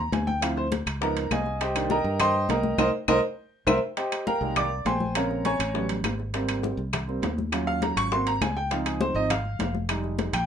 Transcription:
0.00 A#5
0.12 D2 G#5, high bongo, low bongo, high conga, high timbale, low timbale
0.27 G5, high bongo, high conga
0.41 F3 C4 E4 F5, high bongo, high conga, high timbale, claves
0.57 C5, high bongo, high conga
0.72 high bongo, high conga, high timbale, low timbale
0.86 C#2, high bongo, high conga, high timbale, claves
1.01 F3 B3 D#4 A#4 A#5, high bongo, high conga
1.16 high conga, high timbale
1.31 C2 G#4 D#5 F5 G#5, high bongo, low bongo, high conga, high timbale, low timbale, claves
1.46 high bongo, high conga
1.60 G4 C5 D#5 G5, high bongo, high conga, high timbale
1.75 D#3 A#3 D4, high bongo, high conga, high timbale, claves
1.90 A#4 D#5 G5 A#5, high bongo, high conga, low timbale
2.04 G2, high bongo, high conga
2.20 C5 D#5 G5 C6, high bongo, high conga, low conga, high timbale, claves
2.34 high conga
2.49 C2 A#4 D#5 G5 A#5, high bongo, low bongo, high conga, high timbale, low timbale
2.63 high bongo, high conga
2.78 C2 A#4 C5 D#5, low bongo, high conga, high timbale, claves
3.08 C2 A#4 C5 D#5, low bongo, high conga, high timbale, claves
3.67 C2 A#4 C5 E5, low bongo, high conga, high timbale, claves
3.97 G4 C5 D#5 G5, high bongo, high conga, high timbale
4.12 high bongo, high conga, high timbale, claves
4.27 A#4 F5 G5 A#5, high bongo, high conga, low timbale
4.41 C2 D#3 G3 G#3 A#3, high bongo, high conga
4.56 D5 D6, high bongo, high conga, low conga, high timbale, claves
4.71 high conga
4.85 A#1 C5 G5 G#5 C6, high bongo, low bongo, high conga, high timbale, low timbale
5.00 high bongo, high conga
5.15 C#3 G#3 C4 A#4 C#5 F5 A#5, high bongo, high timbale, claves
5.31 high bongo, high conga
5.45 C#5 G#5 A#5 C#6, high bongo, high conga, high timbale, low timbale
5.59 A1, high bongo, high conga, high timbale, claves
5.74 F#3 G3 B3 C#4, high bongo, high conga
5.89 high conga, high timbale
6.04 G#1, high bongo, low bongo, high conga, high timbale, low timbale, claves
6.19 high bongo, high conga
6.34 G3 A#3 C4, high bongo, high conga, high timbale
6.49 high bongo, high conga, high timbale, claves
6.63 high bongo, high conga, low timbale
6.77 C2, high bongo, high conga
6.93 high bongo, high conga, low conga, high timbale, claves
7.08 G3 A#3 C4, high conga
7.22 D#2, high bongo, low bongo, high conga, high timbale, low timbale
7.38 high bongo, high conga
7.52 F#3 C#4 F4, high bongo, high conga, high timbale, claves
7.67 F5, high bongo, high conga
7.82 A#5, high bongo, high conga, high timbale, low timbale
7.96 G#1 C#6, high bongo, high conga, high timbale, claves
8.11 A#3 C4 F#4 C6, high bongo, high conga
8.27 A#5, high conga, high timbale
8.41 C#2 G#5, high bongo, low bongo, high conga, high timbale, low timbale, claves
8.56 G5, high bongo, high conga
8.71 F3 C4 D#4 F5, high bongo, high conga, high timbale
8.85 G#4, high bongo, high conga, high timbale, claves
9.01 C5, high bongo, high conga, low timbale
9.14 G#1 F3 C4 D#4 D#5, high bongo, high conga
9.30 F5, high bongo, high conga, low conga, high timbale, claves
9.45 high conga
9.59 F1, high bongo, low bongo, high conga, high timbale, low timbale
9.75 high bongo, high conga
9.89 G3 G#3 D#4, high bongo, high conga, high timbale, claves
10.04 high bongo, high conga
10.19 high bongo, high conga, high timbale, low timbale
10.33 A#1 G5, high bongo, high conga, high timbale, claves

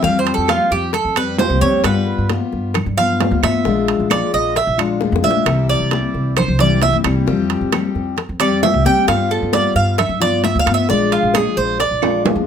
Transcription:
0.01 F2 F3 G3 C4 G4 F5, high bongo, high conga
0.19 C5
0.25 high bongo, high conga, high timbale
0.34 F2 A4
0.48 F3 G3 C4 F4 G4, high bongo, high conga, high timbale, claves
0.70 F2 G4, high bongo, high conga
0.93 A4, muted steel-string acoustic guitar stroke, high bongo, high conga, high timbale
1.05 F2
1.16 G3 C4 G4 B4, high conga, high timbale, claves
1.39 F3 G3 C4 G4 C5, high bongo, low bongo, high conga, low timbale
1.50 C2
1.61 F2 G3 C4 G4 C#5, high bongo, high conga
1.84 G2 G3 B3 F4 B4, high bongo, high conga, high timbale, claves
2.06 high bongo, high conga
2.18 G2
2.29 G3 B3 F4, high bongo, high conga, high timbale
2.52 G2, high bongo, high conga
2.74 muted steel-string acoustic guitar stroke, high bongo, high conga, low conga, high timbale, claves
2.86 G2
2.97 B3 F4 F5, high conga, low conga, high timbale
3.20 G3 B3 F4, high bongo, low bongo, high conga, high timbale, low timbale
3.31 D2
3.43 G2 B3 F4 E5, high bongo, high conga, high timbale, claves
3.65 A#1 F3 G#3 D4 F4, high bongo
3.88 high bongo, high timbale
4.00 A#1
4.10 F3 G#3 D4 F4 D5, high bongo, high conga, high timbale, claves
4.33 A#1 D#5, high bongo, high conga
4.55 E5, muted steel-string acoustic guitar stroke, high bongo, high conga, high timbale
4.67 A#1
4.78 G#3 D4 F4, high timbale, claves
5.01 F3 G#3 D4 F4, high bongo, high conga
5.12 F2, high bongo
5.23 A#1 G#3 D4 F4 E5, high conga
5.31 low bongo
5.46 C2 C3 E3 G3 C4 E4, high bongo, high conga, high timbale, claves
5.69 D5, high bongo, high conga
5.80 C2
5.91 E3 G3 C4 E4, high bongo, high conga, high timbale
6.14 C2, high bongo, high conga
6.37 C5, muted steel-string acoustic guitar stroke, high bongo, high conga, low conga, high timbale, claves
6.48 C2
6.59 E3 G3 C4 E4 D5, high conga, low conga, high timbale
6.81 E3 G3 C4 E4 E5, high bongo, low bongo, high conga, high timbale
6.93 G2
7.04 C2 E3 G3 C4 E4, high bongo, high conga, high timbale, claves
7.26 F2 F3 G3 C4 G4, high bongo, high conga
7.50 high bongo, high timbale
7.61 F2
7.72 F3 G3 C4 G4, high bongo, high conga, high timbale, claves
7.95 F2, high bongo, high conga
8.17 muted steel-string acoustic guitar stroke, high bongo, high conga, high timbale
8.29 F2
8.39 G3 C4 G4 D5, high conga, high timbale, claves
8.62 F3 G3 C4 G4 E5, high bongo, low bongo, high conga, low timbale
8.74 C2
8.85 D2 G3 C4 G4 G5, high bongo, high conga
9.07 G2 G3 B3 F4 F5, high bongo, high timbale, claves
9.31 A4, high bongo, high conga
9.42 G2
9.53 G3 B3 F4 D5, high bongo, high conga, high timbale
9.75 G2 F5, high bongo, high conga
9.98 E5, muted steel-string acoustic guitar stroke, high bongo, high conga, low conga, high timbale, claves
10.09 G2
10.20 B3 F4 D5, high conga, low conga, high timbale
10.44 G3 B3 F4 E5, high bongo, low bongo, high conga, high timbale
10.55 D2
10.59 F5
10.66 G2 B3 F4, high bongo, high conga, high timbale, claves
10.74 E5
10.89 A#1 F3 G#3 D4 F4 D5, high bongo
11.12 F4, high bongo, high timbale
11.23 A#1
11.34 F3 G#3 D4 F4 G#4, high bongo, high conga, high timbale, claves
11.57 A#1 C5, high bongo, high conga
11.79 D5, muted steel-string acoustic guitar stroke, high bongo, high conga, high timbale
11.91 A#1
12.02 G#3 D4 F4, high conga, high timbale, claves
12.25 F3 G#3 D4 F4, high bongo, low bongo, high conga, low timbale
12.36 F2

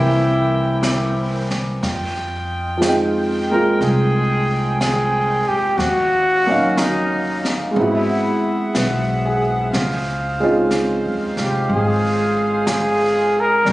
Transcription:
Already playing: C2 E3 G3 A#3 C4 E4 G4 A#4 C5 G5
0.83 brush sweep, snare, hi-hat pedal
1.51 snare
1.81 F2 F4 D#5 G5, brush sweep, snare
2.77 F3 G#3
2.82 C4, brush sweep, snare, hi-hat pedal
2.86 D#4 G5
3.51 G#3 A#3 C4 F4 A#4
3.81 C2 G#4, brush sweep, snare
4.81 G#4, brush sweep, snare, hi-hat pedal
5.48 G4, muted upright bass stroke
5.76 D#2 C#4 F#4 F5, brush sweep, snare
6.46 F#3 A#3 C#4 D#4
6.51 F5
6.77 D#4, brush sweep, snare, hi-hat pedal
7.45 snare
7.71 G#3 B3
7.75 G#1 C4 E4 G#4 E5 F#5, brush sweep
7.80 E4 F#4
8.75 B1 B4, brush sweep, snare, hi-hat pedal
9.25 G#4
9.70 C5 D#5 F5, brush sweep, snare
9.75 C#2
10.40 G#3 C4 C#4 D#4
10.44 F4
10.71 brush sweep, snare, hi-hat pedal
11.05 D#2
11.37 C2, snare
11.43 G4
11.68 G#1, brush sweep
11.74 G#4
12.67 brush sweep, snare, hi-hat pedal
12.72 G#4
13.40 A#4
13.65 C2 G3 C4 A#4 G5, brush sweep, snare

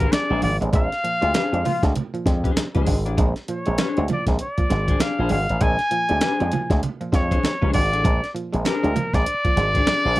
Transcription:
Already playing: A#4
0.00 D4 G#4 C5, kick, closed hi-hat
0.11 D4 G#4 D5, snare, closed hi-hat, high conga
0.30 A#1 G#3 C4 D4 G#4 C5
0.42 G#1 A#2 F3 D5, open hi-hat, high conga
0.61 A1 G#3 C4 D4, closed hi-hat
0.73 A#1 G#3 C4 D4 F5, kick, closed hi-hat, muted conga
0.92 snare, closed hi-hat
1.04 A#2 F3, closed hi-hat
1.21 D2 G#3 C4 D4 F4, closed hi-hat
1.34 D4 G#4 C5, snare, closed hi-hat, high conga
1.53 F2 G#3 C4 D4, closed hi-hat
1.65 A#2 F3 F4, open hi-hat, muted conga, low conga
1.83 D2 G#3 C4 D4, kick, snare, closed hi-hat
1.96 C4 D4, closed hi-hat, muted conga, low conga
2.14 A#2 F3, closed hi-hat
2.26 F2 G#3 C4 D4, kick, snare, closed hi-hat, muted conga
2.44 D4 G#4 C5, kick, closed hi-hat
2.56 C4 D4, snare, closed hi-hat, high conga
2.75 C#2 A#2 F3 D4 G#4 C5, kick, closed hi-hat
2.87 G#1 G#3 C4 D4, kick, open hi-hat, high conga
3.05 A1 D4 G#4 D5, closed hi-hat
3.18 A#1 G#3 C4 D4, kick, closed hi-hat, muted conga
3.36 snare, closed hi-hat
3.48 A#2 F3 C#5, closed hi-hat
3.66 A#1 G#3 C4 D4, closed hi-hat
3.78 D4 G#4 C5, snare, closed hi-hat, high conga
3.97 D2 G#3 C4 D4, closed hi-hat
4.08 A#2 F3 D5, closed hi-hat, muted conga, low conga
4.27 A#1 G#3 C4 D4, kick, snare, closed hi-hat
4.39 C4 D4 D5, closed hi-hat
4.58 A#2 F3, kick, closed hi-hat
4.70 G#1 G#3 C4 D4, snare, closed hi-hat, muted conga
4.88 D4 G#4 C5, kick, closed hi-hat
5.00 C4 D4 G#4 D5 F5, snare, closed hi-hat, high conga
5.19 A#1 A#2 F3 D4 G#4 C5
5.29 G#1 G#3 C4 D4 F5, open hi-hat, high conga
5.49 A1, closed hi-hat
5.61 A#1 G#3 C4 D4 G#5, kick, closed hi-hat, muted conga
5.79 snare, closed hi-hat
5.91 A#2 F3, closed hi-hat
6.09 D2 G#3 C4 D4, closed hi-hat
6.21 D4 G#4 C5, snare, closed hi-hat, high conga
6.40 F2 G#3 C4 D4, closed hi-hat
6.52 A#2 F3, closed hi-hat, muted conga, low conga
6.70 D2 G#3 C4 D4, kick, snare, closed hi-hat
6.82 C4 D4, closed hi-hat, low conga
7.01 A#2 F3, closed hi-hat
7.12 F2 G#3 C4 D4 C#5, kick, snare, closed hi-hat, muted conga
7.31 D4 G#4 C5, kick, closed hi-hat
7.43 C4 D4, snare, closed hi-hat, high conga
7.62 C#2 A#2 F3 D4 G#4 C5, kick
7.74 G#1 G#3 C4 D4 D5, kick, open hi-hat, high conga
7.92 A1 D4 G#4 D5, closed hi-hat
8.04 A#1 G#3 C4 D4, kick, closed hi-hat, muted conga
8.24 snare, closed hi-hat
8.35 A#2 F3, closed hi-hat
8.53 A#1 G#3 C4 D4, closed hi-hat
8.65 D4 G#4 A#4 C5, snare, closed hi-hat, high conga
8.83 D2 G#3 C4 D4, closed hi-hat
8.96 A#2 F3, closed hi-hat, muted conga, low conga
9.14 A#1 G#3 C4 D4 D5, kick, snare, closed hi-hat
9.26 C4 D4, closed hi-hat
9.45 A#2 F3, kick, closed hi-hat
9.56 G#1 G#3 C4 D4, snare, closed hi-hat, muted conga
9.75 D4 G#4 C5, kick, closed hi-hat
9.87 C4 D4 G#4 D5, snare, closed hi-hat, high conga
10.05 A#1 A#2 F3 D4 G#4 C5
10.16 G#3, open hi-hat

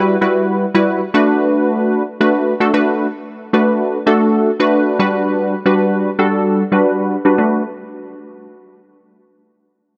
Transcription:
Already playing: G3 E4 F#4 B4
0.21 G3 E4 F#4 B4
0.74 G3 E4 F#4 B4
1.14 A3 D4 F#4 B4
2.20 A3 D4 F#4 B4
2.60 A3 D4 F#4 A4
2.74 A3 D4 F#4 B4
3.53 A3 D4 F#4 B4
4.06 A3 D4 F#4 A4
4.60 A3 D4 F#4 B4
4.99 G3 D4 F#4 B4
5.66 G3 D4 F#4 B4
6.19 G3 D4 F#4 A4
6.72 G3 D4 F#4 B4
7.25 G3 D4 F#4 B4
7.38 A3 D4 F#4 B4

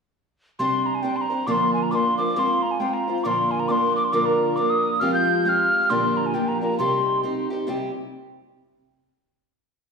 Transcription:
0.59 C3 G3 C4 D4 C5 C6
0.86 A#5
0.95 G#5
1.02 G3 C4 D4 C5 G5
1.16 C6
1.21 A#5
1.30 C4 D4 C5
1.47 A#2 D3 F3 A#3 D4 C5 D6
1.51 C6
1.73 G#5
1.82 A#5
1.91 F3 A#3 D4 C5 D6
1.95 C6
2.18 F3 A#3 D4 C5 D6
2.34 G#3 C4 F4 C5 D6
2.39 C6
2.62 A#5
2.71 G#5
2.80 G#3 C4 F4 C5 G5
2.93 A#5
3.08 C4 F4 C5
3.24 A#2 D3 F3 A#3 D4 A#4 C6 D6
3.51 G#5
3.60 A#5
3.68 F3 A#3 D4 A#4 C6 D6
3.96 D6
4.04 C6
4.12 A#2 D3 F3 A#3 D4 A#4 D6
4.25 A#5
4.56 F3 A#3 D4 A#4 D6
4.70 D#6
5.00 F3 G#3 C4 F4 G4 F6
5.14 G6
5.45 G#3 C4 F4 G4 G6
5.49 F6
5.89 A#2 D3 F3 A#3 D4 G4 C6
6.17 A#5
6.26 G#5
6.34 F3 A#3 D4 G4 G5
6.48 A#5
6.61 F3 A#3 D4 G4 A#5
6.79 C3 G3 C4 D#4 G4 C6
7.23 G3 C4 D#4 G4
7.50 C4 D#4 G4
7.67 C3 G3 C4 E4 G4

